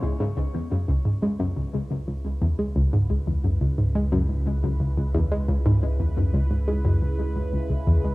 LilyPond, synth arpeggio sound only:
\new Staff \with { instrumentName = "Synth arpeggio sound" } { \clef bass \time 4/4 \key cis \minor \tempo 4 = 88 cis,16 gis,16 cis,16 e,16 fis,16 cis,16 gis,16 gis16 fis,16 cis,16 cis,16 cis,16 cis,16 cis,16 e,16 gis16 | cis,16 gis,16 cis,16 e,16 fis,16 cis,16 gis,16 gis16 fis,16 cis,16 cis,16 cis,16 cis,16 cis,16 e,16 gis16 | cis,16 gis,16 cis,16 e,16 fis,16 cis,16 gis,16 gis16 fis,16 cis,16 cis,16 cis,16 cis,16 cis,16 e,16 gis16 | }